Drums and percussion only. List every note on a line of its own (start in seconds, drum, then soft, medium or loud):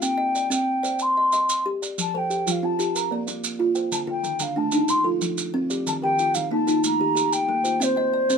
0.02 maracas medium
0.35 maracas soft
0.51 maracas medium
0.84 maracas medium
0.99 maracas medium
1.32 maracas medium
1.49 maracas medium
1.83 maracas medium
1.98 maracas medium
2.31 maracas medium
2.47 maracas medium
2.80 maracas medium
2.96 maracas medium
3.28 maracas medium
3.44 maracas medium
3.75 maracas medium
3.92 maracas medium
4.24 maracas medium
4.39 maracas medium
4.72 maracas medium
4.88 maracas medium
5.21 maracas medium
5.38 maracas medium
5.70 maracas medium
5.87 maracas medium
6.19 maracas medium
6.35 maracas medium
6.68 maracas medium
6.84 maracas medium
7.17 maracas medium
7.33 maracas medium
7.65 maracas medium
7.81 maracas medium
8.30 maracas medium